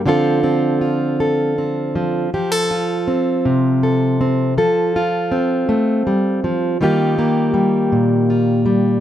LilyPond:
\new Staff \with { instrumentName = "Steel-string acoustic guitar" } { \time 6/8 \key f \mixolydian \tempo 4. = 54 << { <f c' f' a'>8 c'8 f'8 a'8 c'4 | g'16 a'16 f'4. a'4 | a'8 f'2~ f'8 | <g bes f' g'>8 bes4. f'4 | } \\ { d2~ d8 f8 | f4 c'8 c4 c'8 | f4 c'8 a8 g8 f8 | ees4 g8 bes,4 g8 | } >> }